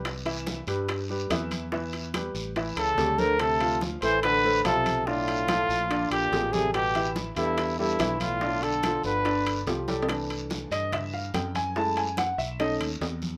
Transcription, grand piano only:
Already playing: G3 G4 B4
0.26 E3 E4 E5
0.67 G3 G4 B4
1.10 G3 G4 B4
1.31 E3 E4 E5
1.72 E3 E4 E5
2.15 G3 G4 B4
2.57 E3 E4 E5
2.98 G3 G4 A4
3.19 A3 A4 C5
3.61 F3 F4 F5
4.03 A3 A4 C5
4.45 A3 A4 C5
4.65 F3 F4 F5
5.07 D3 D4 D5
5.48 F3 F4 A4
5.90 D3 D4 D5
6.32 F3 F4 G#4
6.53 G3 G4 A4
6.95 E3 E4 E5
7.37 G3 G4 A4
7.79 G3 G4 A4
7.99 E3 E4 E5
8.42 D3 D4 D5
8.84 F3 F4 A4
9.25 D3 D4 D5
9.68 F3 F4 G4
9.88 G3 G4 A4
10.08 E3 A3 D4
10.72 D#5
10.93 E5
11.14 F5
11.34 G5
11.56 G#5
11.76 G#3 A3 E4 A5
11.97 G#5
12.18 F#5
12.38 E5
12.59 A3 C#4 D#4 D#5

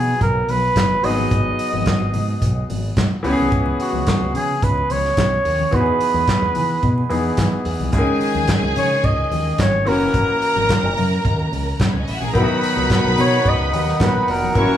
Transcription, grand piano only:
Already playing: F#3 B3 D#4 B4
1.02 F#3 B3 D#4 G#4
3.23 E3 B3 C#4 G4
3.33 G#4
5.71 E3 B3 D#4 F#4
5.81 G#4
7.09 E3 B3 D#4 G#4
7.91 C#3 G#3 C#4 G#4
7.98 D#3
9.85 E3 A#3 C#4 F#4
12.33 D#3 F#3 B3 E4
12.43 F#4
14.00 D#3 A#3 B3 F#4
14.54 E3 A#3 C#4 E4
14.63 F#4

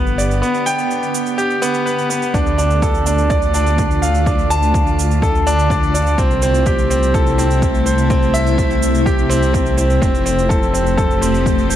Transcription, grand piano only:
Already playing: B3 G4 B4
0.18 D5
0.42 B3
0.66 G5
1.38 G4
1.62 B3
1.86 B4
2.10 B3
2.34 D4
2.58 D4
2.82 A4
3.06 D4
3.30 D5
3.54 D4
4.02 F5
4.26 D4
4.50 A5
5.23 A4
5.47 D4
5.71 D5
5.95 D4
6.18 C4
6.43 C4
6.67 G4
6.90 C4
7.14 A4
7.38 C4
7.86 C5
8.10 C4
8.34 E5
9.06 G4
9.29 C4
9.53 C4
9.78 C4
10.02 C4
10.26 C4
10.49 A4
10.74 C4
10.97 A4
11.22 C4
11.70 C5

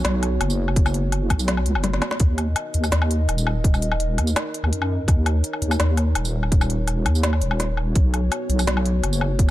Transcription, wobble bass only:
0.05 B1
0.41 F#1
1.30 B1
1.66 C#2
1.76 F#1
2.20 D#2
2.75 D#2
2.92 D#2
3.28 D#1
4.18 D#2
4.63 D#2
4.72 F#2
5.08 D#2
5.62 D#2
5.80 D#2
6.16 D#1
7.06 D#2
7.42 D#1
7.96 B1
8.49 B1
8.67 B1
9.04 F#1

